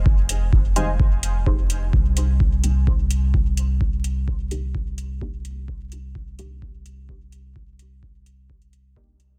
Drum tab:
HH |--x---x---x---x-|--x---x---x---x-|--x---x---x---x-|--x---x---x---x-|
BD |o---o---o---o---|o---o---o---o---|o---o---o---o---|o---o---o---o---|

HH |--x---x--xx---x-|
BD |o---o---o---o---|